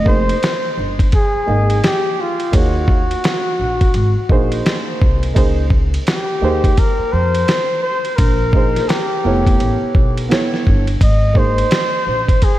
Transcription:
Already playing: F1
0.04 A#3 D#4 G#4 C5, kick
0.29 ride
0.43 snare, hi-hat pedal, ride
0.77 G1
0.99 kick, ride
1.12 G#4, kick, ride
1.35 muted upright bass stroke
1.46 G#1 A#3 D#4 G#4 D#5
1.70 ride
1.84 G4, snare, hi-hat pedal, ride
2.21 F4
2.40 ride
2.52 D#2 A#3 D#4 G#4 C#5, kick, ride
2.56 F#4
2.88 kick
3.11 ride
3.24 snare, hi-hat pedal, ride
3.59 A#1
3.81 kick, ride
3.94 G#1, ride
4.16 muted upright bass stroke
4.29 A#1 A#3 D#4 G#4 C5, kick
4.52 ride
4.66 snare, hi-hat pedal, ride
5.02 C2, kick
5.23 ride
5.34 C#2 A#3 D#4 G#4 C5, kick, ride
5.70 kick
5.94 ride
6.07 G4, snare, hi-hat pedal, ride
6.41 D#2 A#3 D#4 G#4 C5
6.64 kick, ride
6.77 A#4, kick, ride
6.99 muted upright bass stroke
7.13 F2 C5
7.35 ride
7.48 snare, hi-hat pedal, ride
7.83 C5
8.05 ride
8.17 A#1 A#4, kick, ride
8.53 A#3 D#4 G#4 C5, kick
8.76 snare, ride
8.89 G4, snare, hi-hat pedal, ride
9.24 F1 B3 E4 A4 C#5
9.47 kick, ride
9.60 A1, ride
9.95 B1, kick
10.18 ride
10.29 B3 E4 A4 C#5, snare, hi-hat pedal, ride
10.54 snare
10.67 G1, kick
10.87 ride
11.01 G#1 D#5, kick, ride
11.34 A#3 D#4 G#4 C5, kick
11.38 C5
11.58 ride
11.71 snare, hi-hat pedal, ride
12.07 A#1
12.28 kick, ride
12.42 G#4, kick, ride

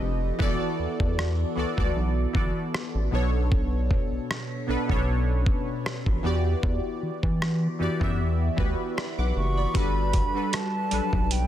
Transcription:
Already playing: F3 C4 D4 G4 A4 B4 D#5
0.01 F1
0.39 E1 E3 B3 F#4 A4 D5, kick
0.79 E2
1.00 E2, kick
1.19 cross-stick
1.55 D2 E3 B3 F#4 A4 D5
1.77 D2 E3 B3 F#4 A4 D5, kick
1.96 B1
2.33 G1 E3 B3 F#4 A4 D5, kick
2.74 cross-stick
2.95 A1
3.11 B1 B2 B3 D4 A4 C#5
3.52 kick
3.91 kick
4.12 B1
4.31 cross-stick
4.67 B1 B2 B3 D4 A4 B4
4.88 B1 B2 B3 C#4 A4 C#5, kick
4.96 D4
5.46 kick
5.86 cross-stick
6.06 A1, kick
6.23 E2 E3 B3 F#4 G4 D5
6.63 E2, kick
7.03 E3
7.23 E3, kick
7.42 cross-stick
7.79 F#2 E3 B3 F#4 G4 D5
8.00 F#2 E3 B3 F#4 G4 E5, kick
8.19 E2
8.56 D2 E3 B3 F#4 G4 B4, kick
8.97 D5 B5, cross-stick
9.18 B1 F#5 D6
9.36 F#1 C#6
9.57 D5 B5
9.74 G1 G3 D4 F#4 A4 B4 B5, kick, closed hi-hat
10.13 kick, closed hi-hat
10.34 G3 D4 F#4 A4 B4
10.53 A5, cross-stick, closed hi-hat
10.91 B1 F#3 G3 D4 A4 B4, closed hi-hat
11.13 B1, kick
11.31 G5, closed hi-hat

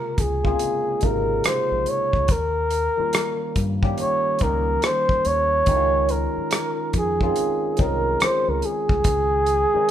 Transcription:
Already playing: C3 C#3 G#3 A#3 F4 A#4
0.18 C#2 G#4, kick, closed hi-hat
0.44 C#3 G#3 A#3 C4 F4 G#4, kick
0.59 closed hi-hat
1.01 G#1 C3 C#3 G#3 A#3 D#4 A#4, kick, closed hi-hat
1.44 C5, cross-stick, closed hi-hat
1.72 A#1
1.86 C#5, closed hi-hat
2.13 C#2, kick
2.28 D#2 A#4, kick, closed hi-hat
2.71 closed hi-hat
2.97 D#3 G3 A#3 C#4 F4, muted fingered electric bass stroke
3.13 cross-stick, closed hi-hat
3.56 G2, kick, closed hi-hat
3.82 D#3 G3 A#3 C#4 G4, kick
3.98 C#5, closed hi-hat
4.39 C#2 D#3 G3 A#3 C#4, kick, closed hi-hat
4.43 D#4 A#4
4.82 C5, cross-stick, closed hi-hat
5.09 kick
5.25 D#2 C#5, closed hi-hat
5.66 C#2 D#3 G#3 C#4 D#4 E4, kick, closed hi-hat
5.76 F4
6.09 A#4, closed hi-hat
6.38 muted fingered electric bass stroke
6.51 cross-stick, closed hi-hat
6.93 F2 G#4, kick, closed hi-hat
7.20 D#3 G#3 C4 C#4 F4 G#4, kick
7.36 closed hi-hat
7.77 C2 D#3 G#3 C4 C#4 G#4, kick, closed hi-hat
7.81 A#4
8.20 C5, muted fingered electric bass stroke, cross-stick, closed hi-hat
8.48 C#2 A#4
8.62 G#4, closed hi-hat
8.89 C2, kick
9.04 C#2, kick, closed hi-hat
9.46 closed hi-hat
9.74 D#3 G#3 C4 C#4 D#4, muted fingered electric bass stroke

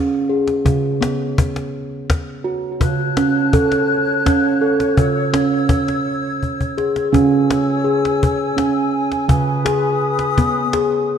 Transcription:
Already playing: C#3 C#4
0.29 G#4
0.47 cajon slap
0.65 C#3, cajon bass
0.84 cajon slap
1.01 B3, cajon slap
1.38 cajon bass
1.56 cajon slap
2.10 cajon bass, cajon slap
2.44 F#4
2.80 C#3 C#5 A5 F#6, cajon bass
2.99 cajon slap
3.17 C#4, cajon slap
3.53 A4, cajon bass
3.72 cajon slap
4.25 C#4, cajon bass, cajon slap
4.62 A4
4.80 cajon slap
4.97 C#3 E6 G#6, cajon bass
5.16 cajon slap
5.33 C#4, cajon slap
5.51 cajon slap
5.69 cajon bass
5.88 cajon slap
6.06 cajon slap
6.43 cajon bass
6.60 cajon bass
6.77 G#4, cajon slap
6.96 cajon slap
7.11 C#3 C#4 C#5 G#5 E6, cajon bass
7.50 cajon slap
7.84 G#4, cajon slap
8.05 cajon slap
8.23 cajon bass
8.57 C#4, cajon slap
9.12 cajon slap
9.29 C#3 B4 D#6, cajon bass
9.65 G#4, cajon slap
10.02 cajon slap
10.19 cajon slap
10.38 B3, cajon bass
10.73 G#4, cajon slap

